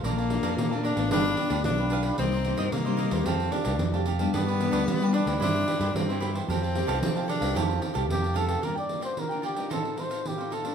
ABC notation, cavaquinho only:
X:1
M:4/4
L:1/16
Q:1/4=112
K:Fmix
V:1 name="Cavaquinho"
[Bdfa] [dfa]2 [Bdfa] z [dfa] [Bdfa] [dfa] [DG=Bf]2 [DGBf] [DGBf] z [GBf] [DGBf] [GB] | [EBce] [Bce]2 [EBce] z [Bce] [EBce] [Bce] [GAfa]2 [GAfa] [GAfa] z [Gfa] [GAfa] [Gfa] | [DG=Bd] [GBd]2 [DGBd] z [GBd] [DGBd] [GBd] [=EGc=e]2 [EGce] [EGce] z [Gce] [EGce] [Gce] | [GAfa] [Gfa]2 [GAfa] z [Gfa] [GAfa] [Gfa] [GAfa]2 [GAfa] [GAfa] z [Gfa] [GAfa] [Gf] |
[K:Gm] [FBdg] [Bdg]2 [FBdg] z [Bdg] [FBdg] [Bdg] [EAcf]2 [EAcf] [EAcf] z [Acf] [EAcf] [Acf] |]